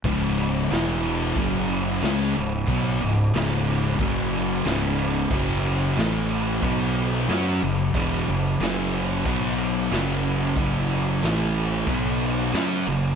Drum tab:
CC |xxxxxxxx|xxxxxxxx|xxxxxxxx|xxxxxxxx|
SD |--o---o-|--o---o-|--o---o-|--o---o-|
BD |o---o---|o---o---|o---o---|o---o---|

CC |xxxxxxxx|
SD |--o---o-|
BD |o---o---|